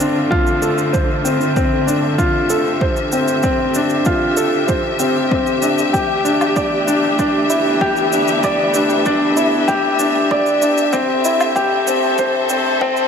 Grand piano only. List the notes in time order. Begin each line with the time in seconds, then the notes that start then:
Already playing: C4 F4 A4 C5
0.00 D4
0.31 F4
0.62 A4
0.93 C5
1.25 C4
1.57 C4
1.87 D4
2.18 F4
2.50 A4
2.81 C5
3.12 C4
3.43 C4
3.76 D4
4.06 F4
4.37 A4
4.68 C5
5.00 C4
5.31 C4
5.62 D4
5.93 G4
6.25 D4
6.56 D5
6.87 D4
7.19 D4
7.50 E4
7.81 G4
8.13 D4
8.44 D5
8.75 D4
9.06 D4
9.37 E4
9.68 G4
9.99 D4
10.31 D5
10.62 D4
10.93 C4
11.25 E4
11.56 G4
11.87 C4
12.19 C5
12.50 C4
12.82 C4